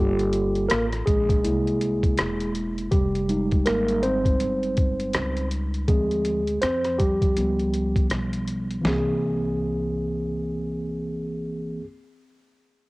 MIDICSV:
0, 0, Header, 1, 4, 480
1, 0, Start_track
1, 0, Tempo, 740741
1, 1892, Time_signature, 4, 2, 24, 8
1, 8357, End_track
2, 0, Start_track
2, 0, Title_t, "Tine electric piano"
2, 0, Program_c, 0, 4
2, 0, Note_on_c, 0, 55, 65
2, 0, Note_on_c, 0, 58, 46
2, 0, Note_on_c, 0, 65, 57
2, 0, Note_on_c, 0, 67, 88
2, 0, Note_on_c, 0, 69, 53
2, 421, Note_off_c, 0, 67, 0
2, 428, Note_off_c, 0, 55, 0
2, 444, Note_on_c, 0, 70, 100
2, 451, Note_off_c, 0, 58, 0
2, 459, Note_on_c, 0, 58, 73
2, 554, Note_off_c, 0, 70, 0
2, 566, Note_off_c, 0, 58, 0
2, 663, Note_off_c, 0, 69, 0
2, 667, Note_off_c, 0, 65, 0
2, 685, Note_on_c, 0, 68, 84
2, 699, Note_on_c, 0, 56, 71
2, 919, Note_off_c, 0, 56, 0
2, 927, Note_on_c, 0, 56, 50
2, 930, Note_on_c, 0, 58, 44
2, 935, Note_on_c, 0, 64, 60
2, 1623, Note_off_c, 0, 68, 0
2, 1863, Note_off_c, 0, 56, 0
2, 1865, Note_off_c, 0, 58, 0
2, 1867, Note_off_c, 0, 64, 0
2, 1887, Note_on_c, 0, 67, 79
2, 1899, Note_on_c, 0, 55, 60
2, 2121, Note_off_c, 0, 55, 0
2, 2129, Note_on_c, 0, 55, 47
2, 2132, Note_on_c, 0, 56, 48
2, 2136, Note_on_c, 0, 63, 54
2, 2370, Note_on_c, 0, 70, 86
2, 2379, Note_on_c, 0, 58, 70
2, 2384, Note_off_c, 0, 67, 0
2, 2599, Note_off_c, 0, 58, 0
2, 2612, Note_on_c, 0, 72, 86
2, 2618, Note_off_c, 0, 70, 0
2, 2620, Note_on_c, 0, 60, 75
2, 3546, Note_off_c, 0, 72, 0
2, 3550, Note_off_c, 0, 60, 0
2, 3784, Note_off_c, 0, 55, 0
2, 3786, Note_off_c, 0, 56, 0
2, 3788, Note_off_c, 0, 63, 0
2, 3810, Note_on_c, 0, 68, 72
2, 3812, Note_on_c, 0, 53, 48
2, 3816, Note_on_c, 0, 56, 65
2, 3820, Note_on_c, 0, 60, 55
2, 4154, Note_off_c, 0, 53, 0
2, 4158, Note_off_c, 0, 60, 0
2, 4265, Note_off_c, 0, 68, 0
2, 4271, Note_off_c, 0, 56, 0
2, 4287, Note_on_c, 0, 72, 92
2, 4301, Note_on_c, 0, 60, 69
2, 4520, Note_off_c, 0, 60, 0
2, 4526, Note_on_c, 0, 67, 78
2, 4537, Note_off_c, 0, 72, 0
2, 4540, Note_on_c, 0, 55, 62
2, 4768, Note_off_c, 0, 55, 0
2, 4772, Note_on_c, 0, 53, 44
2, 4776, Note_on_c, 0, 55, 44
2, 4780, Note_on_c, 0, 59, 53
2, 5223, Note_off_c, 0, 67, 0
2, 5706, Note_off_c, 0, 53, 0
2, 5708, Note_off_c, 0, 55, 0
2, 5710, Note_off_c, 0, 59, 0
2, 5712, Note_on_c, 0, 52, 66
2, 5726, Note_on_c, 0, 58, 62
2, 5739, Note_on_c, 0, 60, 68
2, 5753, Note_on_c, 0, 68, 73
2, 7639, Note_off_c, 0, 52, 0
2, 7653, Note_off_c, 0, 58, 0
2, 7666, Note_off_c, 0, 60, 0
2, 7680, Note_off_c, 0, 68, 0
2, 8357, End_track
3, 0, Start_track
3, 0, Title_t, "Upright bass"
3, 0, Program_c, 1, 32
3, 0, Note_on_c, 1, 31, 99
3, 428, Note_off_c, 1, 31, 0
3, 456, Note_on_c, 1, 33, 92
3, 682, Note_off_c, 1, 33, 0
3, 697, Note_on_c, 1, 34, 79
3, 922, Note_off_c, 1, 34, 0
3, 938, Note_on_c, 1, 36, 89
3, 1391, Note_off_c, 1, 36, 0
3, 1417, Note_on_c, 1, 28, 85
3, 1871, Note_off_c, 1, 28, 0
3, 1893, Note_on_c, 1, 29, 92
3, 2348, Note_off_c, 1, 29, 0
3, 2376, Note_on_c, 1, 32, 83
3, 2830, Note_off_c, 1, 32, 0
3, 2857, Note_on_c, 1, 31, 88
3, 3311, Note_off_c, 1, 31, 0
3, 3338, Note_on_c, 1, 37, 91
3, 3791, Note_off_c, 1, 37, 0
3, 3813, Note_on_c, 1, 38, 90
3, 4269, Note_off_c, 1, 38, 0
3, 4298, Note_on_c, 1, 41, 81
3, 4751, Note_off_c, 1, 41, 0
3, 4778, Note_on_c, 1, 37, 87
3, 5231, Note_off_c, 1, 37, 0
3, 5255, Note_on_c, 1, 35, 86
3, 5710, Note_off_c, 1, 35, 0
3, 5733, Note_on_c, 1, 36, 85
3, 7660, Note_off_c, 1, 36, 0
3, 8357, End_track
4, 0, Start_track
4, 0, Title_t, "Drums"
4, 125, Note_on_c, 9, 42, 49
4, 189, Note_off_c, 9, 42, 0
4, 212, Note_on_c, 9, 42, 67
4, 277, Note_off_c, 9, 42, 0
4, 358, Note_on_c, 9, 42, 44
4, 423, Note_off_c, 9, 42, 0
4, 452, Note_on_c, 9, 42, 87
4, 461, Note_on_c, 9, 37, 101
4, 517, Note_off_c, 9, 42, 0
4, 525, Note_off_c, 9, 37, 0
4, 599, Note_on_c, 9, 42, 48
4, 601, Note_on_c, 9, 37, 34
4, 664, Note_off_c, 9, 42, 0
4, 666, Note_off_c, 9, 37, 0
4, 694, Note_on_c, 9, 42, 70
4, 695, Note_on_c, 9, 36, 75
4, 759, Note_off_c, 9, 36, 0
4, 759, Note_off_c, 9, 42, 0
4, 837, Note_on_c, 9, 36, 85
4, 841, Note_on_c, 9, 42, 57
4, 902, Note_off_c, 9, 36, 0
4, 906, Note_off_c, 9, 42, 0
4, 936, Note_on_c, 9, 42, 88
4, 1001, Note_off_c, 9, 42, 0
4, 1083, Note_on_c, 9, 42, 41
4, 1148, Note_off_c, 9, 42, 0
4, 1173, Note_on_c, 9, 42, 69
4, 1238, Note_off_c, 9, 42, 0
4, 1316, Note_on_c, 9, 36, 77
4, 1319, Note_on_c, 9, 42, 47
4, 1381, Note_off_c, 9, 36, 0
4, 1384, Note_off_c, 9, 42, 0
4, 1409, Note_on_c, 9, 42, 83
4, 1417, Note_on_c, 9, 37, 105
4, 1474, Note_off_c, 9, 42, 0
4, 1482, Note_off_c, 9, 37, 0
4, 1558, Note_on_c, 9, 42, 48
4, 1623, Note_off_c, 9, 42, 0
4, 1652, Note_on_c, 9, 42, 69
4, 1717, Note_off_c, 9, 42, 0
4, 1801, Note_on_c, 9, 42, 45
4, 1866, Note_off_c, 9, 42, 0
4, 1890, Note_on_c, 9, 36, 109
4, 1890, Note_on_c, 9, 42, 79
4, 1954, Note_off_c, 9, 42, 0
4, 1955, Note_off_c, 9, 36, 0
4, 2042, Note_on_c, 9, 42, 46
4, 2107, Note_off_c, 9, 42, 0
4, 2133, Note_on_c, 9, 42, 72
4, 2198, Note_off_c, 9, 42, 0
4, 2278, Note_on_c, 9, 42, 41
4, 2282, Note_on_c, 9, 36, 78
4, 2343, Note_off_c, 9, 42, 0
4, 2347, Note_off_c, 9, 36, 0
4, 2371, Note_on_c, 9, 42, 82
4, 2380, Note_on_c, 9, 37, 101
4, 2436, Note_off_c, 9, 42, 0
4, 2444, Note_off_c, 9, 37, 0
4, 2518, Note_on_c, 9, 42, 50
4, 2582, Note_off_c, 9, 42, 0
4, 2611, Note_on_c, 9, 42, 67
4, 2676, Note_off_c, 9, 42, 0
4, 2756, Note_on_c, 9, 36, 82
4, 2760, Note_on_c, 9, 42, 58
4, 2821, Note_off_c, 9, 36, 0
4, 2824, Note_off_c, 9, 42, 0
4, 2852, Note_on_c, 9, 42, 77
4, 2917, Note_off_c, 9, 42, 0
4, 3002, Note_on_c, 9, 42, 37
4, 3066, Note_off_c, 9, 42, 0
4, 3091, Note_on_c, 9, 42, 64
4, 3096, Note_on_c, 9, 36, 83
4, 3156, Note_off_c, 9, 42, 0
4, 3161, Note_off_c, 9, 36, 0
4, 3239, Note_on_c, 9, 42, 50
4, 3304, Note_off_c, 9, 42, 0
4, 3327, Note_on_c, 9, 42, 78
4, 3335, Note_on_c, 9, 37, 101
4, 3392, Note_off_c, 9, 42, 0
4, 3400, Note_off_c, 9, 37, 0
4, 3478, Note_on_c, 9, 42, 49
4, 3543, Note_off_c, 9, 42, 0
4, 3571, Note_on_c, 9, 42, 70
4, 3636, Note_off_c, 9, 42, 0
4, 3720, Note_on_c, 9, 42, 43
4, 3785, Note_off_c, 9, 42, 0
4, 3811, Note_on_c, 9, 36, 109
4, 3811, Note_on_c, 9, 42, 71
4, 3876, Note_off_c, 9, 36, 0
4, 3876, Note_off_c, 9, 42, 0
4, 3960, Note_on_c, 9, 42, 46
4, 4025, Note_off_c, 9, 42, 0
4, 4049, Note_on_c, 9, 42, 68
4, 4114, Note_off_c, 9, 42, 0
4, 4195, Note_on_c, 9, 42, 45
4, 4260, Note_off_c, 9, 42, 0
4, 4288, Note_on_c, 9, 42, 88
4, 4296, Note_on_c, 9, 37, 97
4, 4352, Note_off_c, 9, 42, 0
4, 4361, Note_off_c, 9, 37, 0
4, 4435, Note_on_c, 9, 42, 45
4, 4437, Note_on_c, 9, 37, 32
4, 4500, Note_off_c, 9, 42, 0
4, 4502, Note_off_c, 9, 37, 0
4, 4533, Note_on_c, 9, 42, 72
4, 4534, Note_on_c, 9, 36, 66
4, 4597, Note_off_c, 9, 42, 0
4, 4599, Note_off_c, 9, 36, 0
4, 4677, Note_on_c, 9, 36, 78
4, 4678, Note_on_c, 9, 42, 56
4, 4742, Note_off_c, 9, 36, 0
4, 4743, Note_off_c, 9, 42, 0
4, 4773, Note_on_c, 9, 42, 80
4, 4838, Note_off_c, 9, 42, 0
4, 4921, Note_on_c, 9, 42, 38
4, 4986, Note_off_c, 9, 42, 0
4, 5013, Note_on_c, 9, 42, 67
4, 5078, Note_off_c, 9, 42, 0
4, 5156, Note_on_c, 9, 36, 72
4, 5159, Note_on_c, 9, 42, 45
4, 5221, Note_off_c, 9, 36, 0
4, 5224, Note_off_c, 9, 42, 0
4, 5249, Note_on_c, 9, 42, 78
4, 5256, Note_on_c, 9, 37, 96
4, 5313, Note_off_c, 9, 42, 0
4, 5321, Note_off_c, 9, 37, 0
4, 5398, Note_on_c, 9, 42, 51
4, 5462, Note_off_c, 9, 42, 0
4, 5492, Note_on_c, 9, 42, 74
4, 5557, Note_off_c, 9, 42, 0
4, 5641, Note_on_c, 9, 42, 39
4, 5706, Note_off_c, 9, 42, 0
4, 5734, Note_on_c, 9, 38, 85
4, 5799, Note_off_c, 9, 38, 0
4, 8357, End_track
0, 0, End_of_file